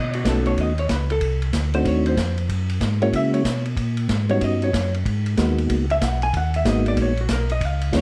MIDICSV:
0, 0, Header, 1, 5, 480
1, 0, Start_track
1, 0, Tempo, 320000
1, 1815, Time_signature, 4, 2, 24, 8
1, 12016, End_track
2, 0, Start_track
2, 0, Title_t, "Hollow-body jazz guitar"
2, 0, Program_c, 0, 26
2, 0, Note_on_c, 0, 75, 94
2, 205, Note_off_c, 0, 75, 0
2, 224, Note_on_c, 0, 66, 69
2, 379, Note_off_c, 0, 66, 0
2, 427, Note_on_c, 0, 69, 75
2, 698, Note_off_c, 0, 69, 0
2, 701, Note_on_c, 0, 73, 86
2, 858, Note_off_c, 0, 73, 0
2, 910, Note_on_c, 0, 75, 82
2, 1181, Note_off_c, 0, 75, 0
2, 1189, Note_on_c, 0, 73, 91
2, 1394, Note_off_c, 0, 73, 0
2, 1394, Note_on_c, 0, 71, 69
2, 1663, Note_off_c, 0, 71, 0
2, 1677, Note_on_c, 0, 69, 89
2, 2107, Note_off_c, 0, 69, 0
2, 2620, Note_on_c, 0, 72, 88
2, 2780, Note_off_c, 0, 72, 0
2, 2811, Note_on_c, 0, 73, 81
2, 3092, Note_off_c, 0, 73, 0
2, 3104, Note_on_c, 0, 72, 93
2, 3541, Note_off_c, 0, 72, 0
2, 4538, Note_on_c, 0, 73, 96
2, 4699, Note_off_c, 0, 73, 0
2, 4734, Note_on_c, 0, 76, 101
2, 5005, Note_on_c, 0, 73, 81
2, 5014, Note_off_c, 0, 76, 0
2, 5451, Note_off_c, 0, 73, 0
2, 6462, Note_on_c, 0, 73, 93
2, 6621, Note_off_c, 0, 73, 0
2, 6659, Note_on_c, 0, 75, 92
2, 6935, Note_off_c, 0, 75, 0
2, 6956, Note_on_c, 0, 73, 91
2, 7386, Note_off_c, 0, 73, 0
2, 8871, Note_on_c, 0, 76, 104
2, 9058, Note_off_c, 0, 76, 0
2, 9058, Note_on_c, 0, 78, 83
2, 9333, Note_off_c, 0, 78, 0
2, 9347, Note_on_c, 0, 80, 106
2, 9501, Note_off_c, 0, 80, 0
2, 9552, Note_on_c, 0, 78, 104
2, 9820, Note_off_c, 0, 78, 0
2, 9841, Note_on_c, 0, 76, 92
2, 9987, Note_off_c, 0, 76, 0
2, 10034, Note_on_c, 0, 75, 89
2, 10301, Note_off_c, 0, 75, 0
2, 10321, Note_on_c, 0, 74, 97
2, 10467, Note_off_c, 0, 74, 0
2, 10533, Note_on_c, 0, 73, 84
2, 10790, Note_off_c, 0, 73, 0
2, 10811, Note_on_c, 0, 66, 55
2, 10952, Note_off_c, 0, 66, 0
2, 10993, Note_on_c, 0, 70, 86
2, 11259, Note_off_c, 0, 70, 0
2, 11277, Note_on_c, 0, 75, 91
2, 11474, Note_off_c, 0, 75, 0
2, 11474, Note_on_c, 0, 77, 105
2, 11920, Note_off_c, 0, 77, 0
2, 11955, Note_on_c, 0, 73, 85
2, 12016, Note_off_c, 0, 73, 0
2, 12016, End_track
3, 0, Start_track
3, 0, Title_t, "Tonewheel organ"
3, 0, Program_c, 1, 16
3, 370, Note_on_c, 1, 59, 54
3, 372, Note_on_c, 1, 57, 57
3, 374, Note_on_c, 1, 61, 49
3, 374, Note_on_c, 1, 63, 55
3, 375, Note_on_c, 1, 66, 55
3, 1098, Note_off_c, 1, 59, 0
3, 1099, Note_off_c, 1, 57, 0
3, 1100, Note_off_c, 1, 61, 0
3, 1100, Note_off_c, 1, 63, 0
3, 1101, Note_off_c, 1, 66, 0
3, 2615, Note_on_c, 1, 57, 76
3, 2619, Note_on_c, 1, 60, 76
3, 2624, Note_on_c, 1, 62, 68
3, 2627, Note_on_c, 1, 66, 85
3, 2632, Note_on_c, 1, 63, 74
3, 3228, Note_off_c, 1, 57, 0
3, 3230, Note_off_c, 1, 60, 0
3, 3233, Note_off_c, 1, 62, 0
3, 3234, Note_off_c, 1, 66, 0
3, 3236, Note_off_c, 1, 63, 0
3, 4526, Note_on_c, 1, 56, 79
3, 4526, Note_on_c, 1, 61, 67
3, 4528, Note_on_c, 1, 58, 65
3, 4528, Note_on_c, 1, 66, 83
3, 4534, Note_on_c, 1, 64, 72
3, 5143, Note_off_c, 1, 56, 0
3, 5144, Note_off_c, 1, 58, 0
3, 5144, Note_off_c, 1, 61, 0
3, 5144, Note_off_c, 1, 66, 0
3, 5147, Note_off_c, 1, 64, 0
3, 6441, Note_on_c, 1, 59, 67
3, 6442, Note_on_c, 1, 61, 69
3, 6443, Note_on_c, 1, 55, 64
3, 6451, Note_on_c, 1, 63, 58
3, 6453, Note_on_c, 1, 66, 79
3, 7060, Note_off_c, 1, 59, 0
3, 7060, Note_off_c, 1, 61, 0
3, 7061, Note_off_c, 1, 55, 0
3, 7065, Note_off_c, 1, 63, 0
3, 7066, Note_off_c, 1, 66, 0
3, 8064, Note_on_c, 1, 58, 60
3, 8066, Note_on_c, 1, 56, 57
3, 8069, Note_on_c, 1, 66, 68
3, 8074, Note_on_c, 1, 63, 54
3, 8076, Note_on_c, 1, 59, 54
3, 8784, Note_off_c, 1, 56, 0
3, 8784, Note_off_c, 1, 58, 0
3, 8786, Note_off_c, 1, 66, 0
3, 8788, Note_off_c, 1, 63, 0
3, 8789, Note_off_c, 1, 59, 0
3, 9976, Note_on_c, 1, 56, 69
3, 9976, Note_on_c, 1, 63, 59
3, 9977, Note_on_c, 1, 59, 59
3, 9979, Note_on_c, 1, 58, 53
3, 9981, Note_on_c, 1, 66, 77
3, 10697, Note_off_c, 1, 63, 0
3, 10698, Note_off_c, 1, 56, 0
3, 10698, Note_off_c, 1, 59, 0
3, 10699, Note_off_c, 1, 58, 0
3, 10700, Note_off_c, 1, 66, 0
3, 11884, Note_on_c, 1, 59, 65
3, 11884, Note_on_c, 1, 61, 66
3, 11885, Note_on_c, 1, 56, 78
3, 11886, Note_on_c, 1, 65, 76
3, 11889, Note_on_c, 1, 63, 68
3, 12016, Note_off_c, 1, 56, 0
3, 12016, Note_off_c, 1, 59, 0
3, 12016, Note_off_c, 1, 61, 0
3, 12016, Note_off_c, 1, 63, 0
3, 12016, Note_off_c, 1, 65, 0
3, 12016, End_track
4, 0, Start_track
4, 0, Title_t, "Tonewheel organ"
4, 0, Program_c, 2, 16
4, 0, Note_on_c, 2, 47, 79
4, 357, Note_off_c, 2, 47, 0
4, 372, Note_on_c, 2, 35, 102
4, 838, Note_off_c, 2, 35, 0
4, 857, Note_on_c, 2, 39, 81
4, 1321, Note_off_c, 2, 39, 0
4, 1340, Note_on_c, 2, 37, 86
4, 1803, Note_off_c, 2, 37, 0
4, 1810, Note_on_c, 2, 36, 88
4, 2279, Note_off_c, 2, 36, 0
4, 2293, Note_on_c, 2, 38, 96
4, 2761, Note_off_c, 2, 38, 0
4, 2774, Note_on_c, 2, 39, 81
4, 3241, Note_off_c, 2, 39, 0
4, 3253, Note_on_c, 2, 41, 86
4, 3721, Note_off_c, 2, 41, 0
4, 3734, Note_on_c, 2, 42, 88
4, 4201, Note_off_c, 2, 42, 0
4, 4212, Note_on_c, 2, 44, 96
4, 4680, Note_off_c, 2, 44, 0
4, 4690, Note_on_c, 2, 49, 87
4, 5159, Note_off_c, 2, 49, 0
4, 5169, Note_on_c, 2, 47, 86
4, 5638, Note_off_c, 2, 47, 0
4, 5649, Note_on_c, 2, 46, 89
4, 6118, Note_off_c, 2, 46, 0
4, 6131, Note_on_c, 2, 44, 97
4, 6598, Note_off_c, 2, 44, 0
4, 6616, Note_on_c, 2, 43, 82
4, 7081, Note_off_c, 2, 43, 0
4, 7099, Note_on_c, 2, 42, 81
4, 7562, Note_off_c, 2, 42, 0
4, 7583, Note_on_c, 2, 44, 89
4, 8044, Note_off_c, 2, 44, 0
4, 8057, Note_on_c, 2, 39, 92
4, 8520, Note_off_c, 2, 39, 0
4, 8542, Note_on_c, 2, 37, 81
4, 9003, Note_off_c, 2, 37, 0
4, 9020, Note_on_c, 2, 35, 85
4, 9481, Note_off_c, 2, 35, 0
4, 9498, Note_on_c, 2, 39, 92
4, 9959, Note_off_c, 2, 39, 0
4, 9979, Note_on_c, 2, 32, 98
4, 10440, Note_off_c, 2, 32, 0
4, 10453, Note_on_c, 2, 34, 74
4, 10916, Note_off_c, 2, 34, 0
4, 10932, Note_on_c, 2, 35, 89
4, 11395, Note_off_c, 2, 35, 0
4, 11409, Note_on_c, 2, 37, 81
4, 11873, Note_off_c, 2, 37, 0
4, 11892, Note_on_c, 2, 39, 99
4, 12016, Note_off_c, 2, 39, 0
4, 12016, End_track
5, 0, Start_track
5, 0, Title_t, "Drums"
5, 201, Note_on_c, 9, 51, 50
5, 351, Note_off_c, 9, 51, 0
5, 374, Note_on_c, 9, 36, 22
5, 378, Note_on_c, 9, 44, 51
5, 378, Note_on_c, 9, 51, 66
5, 380, Note_on_c, 9, 38, 64
5, 524, Note_off_c, 9, 36, 0
5, 528, Note_off_c, 9, 44, 0
5, 528, Note_off_c, 9, 51, 0
5, 530, Note_off_c, 9, 38, 0
5, 684, Note_on_c, 9, 51, 39
5, 834, Note_off_c, 9, 51, 0
5, 857, Note_on_c, 9, 36, 24
5, 863, Note_on_c, 9, 51, 58
5, 1007, Note_off_c, 9, 36, 0
5, 1013, Note_off_c, 9, 51, 0
5, 1167, Note_on_c, 9, 51, 43
5, 1317, Note_off_c, 9, 51, 0
5, 1336, Note_on_c, 9, 36, 21
5, 1336, Note_on_c, 9, 44, 54
5, 1336, Note_on_c, 9, 51, 63
5, 1337, Note_on_c, 9, 38, 73
5, 1486, Note_off_c, 9, 36, 0
5, 1486, Note_off_c, 9, 44, 0
5, 1486, Note_off_c, 9, 51, 0
5, 1487, Note_off_c, 9, 38, 0
5, 1649, Note_on_c, 9, 51, 49
5, 1799, Note_off_c, 9, 51, 0
5, 1813, Note_on_c, 9, 51, 67
5, 1815, Note_on_c, 9, 36, 19
5, 1963, Note_off_c, 9, 51, 0
5, 1965, Note_off_c, 9, 36, 0
5, 2128, Note_on_c, 9, 51, 47
5, 2278, Note_off_c, 9, 51, 0
5, 2294, Note_on_c, 9, 36, 18
5, 2295, Note_on_c, 9, 44, 60
5, 2295, Note_on_c, 9, 51, 71
5, 2296, Note_on_c, 9, 38, 65
5, 2444, Note_off_c, 9, 36, 0
5, 2445, Note_off_c, 9, 44, 0
5, 2445, Note_off_c, 9, 51, 0
5, 2446, Note_off_c, 9, 38, 0
5, 2604, Note_on_c, 9, 51, 45
5, 2754, Note_off_c, 9, 51, 0
5, 2776, Note_on_c, 9, 36, 26
5, 2779, Note_on_c, 9, 51, 63
5, 2926, Note_off_c, 9, 36, 0
5, 2929, Note_off_c, 9, 51, 0
5, 3085, Note_on_c, 9, 51, 44
5, 3235, Note_off_c, 9, 51, 0
5, 3255, Note_on_c, 9, 36, 24
5, 3258, Note_on_c, 9, 44, 55
5, 3258, Note_on_c, 9, 51, 71
5, 3260, Note_on_c, 9, 38, 80
5, 3405, Note_off_c, 9, 36, 0
5, 3408, Note_off_c, 9, 44, 0
5, 3408, Note_off_c, 9, 51, 0
5, 3410, Note_off_c, 9, 38, 0
5, 3563, Note_on_c, 9, 51, 49
5, 3713, Note_off_c, 9, 51, 0
5, 3733, Note_on_c, 9, 36, 17
5, 3741, Note_on_c, 9, 51, 65
5, 3883, Note_off_c, 9, 36, 0
5, 3891, Note_off_c, 9, 51, 0
5, 4042, Note_on_c, 9, 51, 50
5, 4192, Note_off_c, 9, 51, 0
5, 4211, Note_on_c, 9, 36, 23
5, 4212, Note_on_c, 9, 44, 53
5, 4212, Note_on_c, 9, 51, 63
5, 4214, Note_on_c, 9, 38, 68
5, 4361, Note_off_c, 9, 36, 0
5, 4362, Note_off_c, 9, 44, 0
5, 4362, Note_off_c, 9, 51, 0
5, 4364, Note_off_c, 9, 38, 0
5, 4525, Note_on_c, 9, 51, 44
5, 4675, Note_off_c, 9, 51, 0
5, 4692, Note_on_c, 9, 36, 21
5, 4700, Note_on_c, 9, 51, 66
5, 4842, Note_off_c, 9, 36, 0
5, 4850, Note_off_c, 9, 51, 0
5, 5006, Note_on_c, 9, 51, 47
5, 5156, Note_off_c, 9, 51, 0
5, 5171, Note_on_c, 9, 36, 18
5, 5175, Note_on_c, 9, 44, 62
5, 5175, Note_on_c, 9, 51, 76
5, 5176, Note_on_c, 9, 38, 73
5, 5321, Note_off_c, 9, 36, 0
5, 5325, Note_off_c, 9, 44, 0
5, 5325, Note_off_c, 9, 51, 0
5, 5326, Note_off_c, 9, 38, 0
5, 5482, Note_on_c, 9, 51, 47
5, 5632, Note_off_c, 9, 51, 0
5, 5649, Note_on_c, 9, 36, 27
5, 5655, Note_on_c, 9, 51, 61
5, 5799, Note_off_c, 9, 36, 0
5, 5805, Note_off_c, 9, 51, 0
5, 5955, Note_on_c, 9, 51, 49
5, 6105, Note_off_c, 9, 51, 0
5, 6132, Note_on_c, 9, 36, 18
5, 6135, Note_on_c, 9, 44, 54
5, 6135, Note_on_c, 9, 51, 61
5, 6136, Note_on_c, 9, 38, 68
5, 6282, Note_off_c, 9, 36, 0
5, 6285, Note_off_c, 9, 44, 0
5, 6285, Note_off_c, 9, 51, 0
5, 6286, Note_off_c, 9, 38, 0
5, 6440, Note_on_c, 9, 51, 44
5, 6590, Note_off_c, 9, 51, 0
5, 6616, Note_on_c, 9, 36, 22
5, 6617, Note_on_c, 9, 51, 64
5, 6766, Note_off_c, 9, 36, 0
5, 6767, Note_off_c, 9, 51, 0
5, 6929, Note_on_c, 9, 51, 41
5, 7079, Note_off_c, 9, 51, 0
5, 7100, Note_on_c, 9, 36, 26
5, 7108, Note_on_c, 9, 44, 52
5, 7108, Note_on_c, 9, 51, 70
5, 7110, Note_on_c, 9, 38, 73
5, 7250, Note_off_c, 9, 36, 0
5, 7258, Note_off_c, 9, 44, 0
5, 7258, Note_off_c, 9, 51, 0
5, 7260, Note_off_c, 9, 38, 0
5, 7416, Note_on_c, 9, 51, 48
5, 7566, Note_off_c, 9, 51, 0
5, 7583, Note_on_c, 9, 36, 29
5, 7588, Note_on_c, 9, 51, 61
5, 7733, Note_off_c, 9, 36, 0
5, 7738, Note_off_c, 9, 51, 0
5, 7889, Note_on_c, 9, 51, 49
5, 8039, Note_off_c, 9, 51, 0
5, 8059, Note_on_c, 9, 44, 50
5, 8059, Note_on_c, 9, 51, 66
5, 8060, Note_on_c, 9, 36, 20
5, 8061, Note_on_c, 9, 38, 70
5, 8210, Note_off_c, 9, 36, 0
5, 8210, Note_off_c, 9, 44, 0
5, 8210, Note_off_c, 9, 51, 0
5, 8211, Note_off_c, 9, 38, 0
5, 8374, Note_on_c, 9, 51, 50
5, 8524, Note_off_c, 9, 51, 0
5, 8543, Note_on_c, 9, 36, 22
5, 8544, Note_on_c, 9, 51, 70
5, 8693, Note_off_c, 9, 36, 0
5, 8694, Note_off_c, 9, 51, 0
5, 8850, Note_on_c, 9, 51, 46
5, 9000, Note_off_c, 9, 51, 0
5, 9020, Note_on_c, 9, 36, 25
5, 9021, Note_on_c, 9, 44, 62
5, 9021, Note_on_c, 9, 51, 79
5, 9022, Note_on_c, 9, 38, 73
5, 9170, Note_off_c, 9, 36, 0
5, 9171, Note_off_c, 9, 44, 0
5, 9171, Note_off_c, 9, 51, 0
5, 9172, Note_off_c, 9, 38, 0
5, 9328, Note_on_c, 9, 51, 50
5, 9478, Note_off_c, 9, 51, 0
5, 9500, Note_on_c, 9, 36, 25
5, 9504, Note_on_c, 9, 51, 67
5, 9650, Note_off_c, 9, 36, 0
5, 9654, Note_off_c, 9, 51, 0
5, 9807, Note_on_c, 9, 51, 51
5, 9957, Note_off_c, 9, 51, 0
5, 9977, Note_on_c, 9, 36, 22
5, 9979, Note_on_c, 9, 44, 61
5, 9979, Note_on_c, 9, 51, 70
5, 9980, Note_on_c, 9, 38, 65
5, 10127, Note_off_c, 9, 36, 0
5, 10129, Note_off_c, 9, 44, 0
5, 10129, Note_off_c, 9, 51, 0
5, 10130, Note_off_c, 9, 38, 0
5, 10287, Note_on_c, 9, 51, 48
5, 10437, Note_off_c, 9, 51, 0
5, 10451, Note_on_c, 9, 51, 67
5, 10454, Note_on_c, 9, 36, 22
5, 10601, Note_off_c, 9, 51, 0
5, 10604, Note_off_c, 9, 36, 0
5, 10759, Note_on_c, 9, 51, 40
5, 10909, Note_off_c, 9, 51, 0
5, 10928, Note_on_c, 9, 44, 59
5, 10928, Note_on_c, 9, 51, 73
5, 10929, Note_on_c, 9, 38, 76
5, 10932, Note_on_c, 9, 36, 21
5, 11078, Note_off_c, 9, 44, 0
5, 11078, Note_off_c, 9, 51, 0
5, 11079, Note_off_c, 9, 38, 0
5, 11082, Note_off_c, 9, 36, 0
5, 11242, Note_on_c, 9, 51, 49
5, 11392, Note_off_c, 9, 51, 0
5, 11410, Note_on_c, 9, 36, 24
5, 11415, Note_on_c, 9, 51, 70
5, 11560, Note_off_c, 9, 36, 0
5, 11565, Note_off_c, 9, 51, 0
5, 11720, Note_on_c, 9, 51, 52
5, 11870, Note_off_c, 9, 51, 0
5, 11889, Note_on_c, 9, 36, 19
5, 11893, Note_on_c, 9, 44, 64
5, 11893, Note_on_c, 9, 51, 61
5, 11895, Note_on_c, 9, 38, 76
5, 12016, Note_off_c, 9, 36, 0
5, 12016, Note_off_c, 9, 38, 0
5, 12016, Note_off_c, 9, 44, 0
5, 12016, Note_off_c, 9, 51, 0
5, 12016, End_track
0, 0, End_of_file